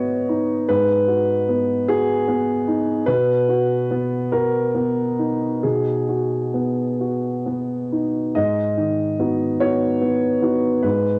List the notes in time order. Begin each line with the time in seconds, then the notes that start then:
Already playing: G#2 B3 F#4 C#5 D#5
0.29 D#4
0.69 G#2 B4
1.08 F#4
1.49 B3
1.88 F#4 G#4
2.28 B3
2.68 D#4
3.06 B2 B4
3.49 F#4
3.91 B3
4.32 F#4 A#4
4.75 B3
5.19 D#4
5.63 B2 G#4
6.09 F#4
6.54 B3
7.01 F#4
7.46 B3
7.92 D#4
8.35 G#2 D#5
8.78 D#3
9.20 B3 D#4 F#4
9.60 B3 D#4 F#4 C#5
10.02 B3
10.42 B3 D#4 F#4
10.83 G#2 B4